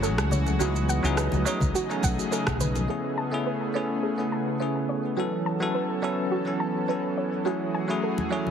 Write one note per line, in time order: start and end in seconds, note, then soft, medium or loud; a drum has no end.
0.00 0.18 F#1 loud
0.00 1.71 E3 medium
0.00 0.57 F#3 medium
0.00 0.56 A3 medium
0.00 0.57 A3 medium
0.00 0.57 C#4 medium
0.00 1.71 F#4 loud
0.00 0.58 G#4 medium
0.00 0.17 A4 medium
0.00 shaker soft
0.04 0.58 E4 medium
0.04 0.58 G#4 medium
0.18 0.57 C#2 medium
0.18 cross-stick medium
0.18 shaker soft
0.31 0.46 C#5 medium
0.31 low conga medium
0.31 shaker medium
0.46 high conga medium
0.46 shaker soft
0.59 1.00 C#2 loud
0.59 1.00 F#3 medium
0.59 1.00 B3 medium
0.59 1.74 B3 medium
0.59 1.01 D#4 medium
0.59 1.01 E4 medium
0.59 0.74 F#4 loud
0.59 1.01 G#4 medium
0.59 2.87 D#5 medium
0.59 shaker soft
0.76 shaker soft
0.89 1.03 F#5 loud
0.89 shaker medium
1.03 1.27 C#2 medium
1.03 1.42 F#3 medium
1.03 1.43 B3 medium
1.03 1.43 D#4 medium
1.03 1.43 E4 medium
1.03 1.44 G#4 loud
1.03 shaker soft
1.17 1.31 B4 medium
1.17 cross-stick medium
1.17 shaker soft
1.32 1.44 C#2 medium
1.32 high conga medium
1.32 shaker soft
1.45 1.86 F#3 medium
1.45 1.86 A3 medium
1.45 1.86 C#4 medium
1.45 1.87 D#4 medium
1.45 1.87 G#4 loud
1.45 1.60 C#5 medium
1.45 shaker medium
1.60 1.73 C#2 medium
1.60 kick loud
1.60 low conga medium
1.60 shaker soft
1.74 2.87 C#3 medium
1.74 2.88 A3 medium
1.74 1.88 F#4 loud
1.74 2.88 G#4 medium
1.74 shaker soft
1.89 2.28 F#3 medium
1.89 2.29 A3 medium
1.89 2.29 C#4 medium
1.89 2.29 D#4 medium
1.89 2.30 G#4 medium
1.89 shaker soft
2.03 2.16 B1 medium
2.03 2.17 F#5 loud
2.03 kick loud
2.03 high conga medium
2.03 shaker medium
2.19 shaker soft
2.31 2.85 F#3 medium
2.31 2.85 A3 medium
2.31 2.86 C#4 medium
2.31 2.86 D#4 medium
2.31 2.86 G#4 medium
2.31 2.46 A4 medium
2.31 shaker soft
2.47 2.86 B1 medium
2.47 kick medium
2.47 cross-stick medium
2.47 shaker soft
2.60 2.75 B4 medium
2.60 low conga medium
2.60 shaker medium
2.75 high conga medium
2.75 shaker soft
2.88 5.15 C#3 medium
2.88 3.28 A3 medium
2.88 5.15 A3 medium
2.88 3.29 B3 medium
2.88 7.42 B3 medium
2.88 3.29 C#4 medium
2.88 3.30 E4 medium
2.88 5.15 G#4 medium
2.88 3.03 G#4 medium
2.88 3.30 G#4 medium
3.18 3.31 A5 loud
3.31 3.71 A3 medium
3.31 3.71 B3 medium
3.31 3.72 C#4 medium
3.31 3.72 E4 medium
3.31 3.72 G#4 medium
3.47 3.60 B4 medium
3.74 4.14 A3 medium
3.74 4.14 B3 medium
3.74 4.15 C#4 medium
3.74 4.15 E4 medium
3.74 4.16 G#4 medium
3.74 3.89 C#5 medium
4.03 4.17 G#4 medium
4.18 4.57 A3 medium
4.18 4.57 B3 medium
4.18 4.58 C#4 medium
4.18 4.58 E4 medium
4.18 4.58 G#4 medium
4.32 4.46 A5 medium
4.60 5.14 A3 medium
4.60 5.14 B3 medium
4.60 5.15 C#4 medium
4.60 5.15 E4 medium
4.60 5.15 G#4 medium
4.60 4.74 B4 medium
4.89 5.03 C#5 medium
5.17 8.51 E3 medium
5.17 5.57 F#3 medium
5.17 5.58 B3 medium
5.17 7.44 C#4 medium
5.17 5.58 C#4 medium
5.17 5.58 E4 medium
5.17 5.31 F#4 medium
5.17 7.44 A4 medium
5.17 5.59 A4 medium
5.46 5.60 A5 medium
5.60 5.99 F#3 medium
5.60 6.00 B3 medium
5.60 6.00 C#4 medium
5.60 6.00 E4 medium
5.60 6.01 A4 medium
5.75 5.88 B4 medium
6.02 6.43 F#3 medium
6.02 6.43 B3 medium
6.02 6.43 C#4 medium
6.02 6.43 E4 medium
6.02 6.44 A4 medium
6.02 6.17 C#5 medium
6.31 6.45 F#4 medium
6.45 6.85 F#3 medium
6.45 6.85 B3 medium
6.45 6.86 C#4 medium
6.45 6.86 E4 medium
6.45 6.86 A4 medium
6.60 6.74 A5 medium
6.88 7.42 F#3 medium
6.88 7.43 B3 medium
6.88 7.43 C#4 medium
6.88 7.43 E4 medium
6.88 7.44 A4 medium
6.88 7.02 B4 medium
7.17 7.32 C#5 medium
7.45 7.85 F#3 medium
7.45 7.86 A3 medium
7.45 8.51 A3 medium
7.45 7.86 C#4 medium
7.45 7.86 E4 medium
7.45 7.59 F#4 medium
7.45 8.51 F#4 medium
7.45 8.51 G#4 medium
7.45 7.87 G#4 medium
7.74 7.88 G#5 medium
7.88 8.28 F#3 medium
7.88 8.28 A3 medium
7.88 8.28 C#4 medium
7.88 8.29 E4 medium
7.88 8.29 G#4 medium
8.03 8.17 A4 medium
8.18 high conga medium
8.30 8.51 F#3 medium
8.30 8.51 A3 medium
8.30 8.51 C#4 medium
8.30 8.51 E4 medium
8.30 8.51 G#4 medium
8.30 8.46 C#5 medium
8.47 low conga medium